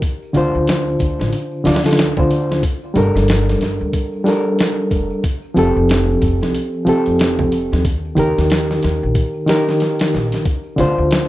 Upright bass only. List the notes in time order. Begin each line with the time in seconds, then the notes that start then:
0.35 D2
0.55 D2
1.00 D2
1.19 A1
1.65 D2
2.17 D2
2.96 G1
3.15 G1
3.61 G1
3.81 D2
4.91 F1
5.57 F1
5.76 F1
6.22 F1
6.42 C2
7.07 F1
7.72 D#2
8.19 D#2
8.38 D#2
8.84 D#2
9.03 A#1
10.14 A#1
10.79 D2
10.98 D2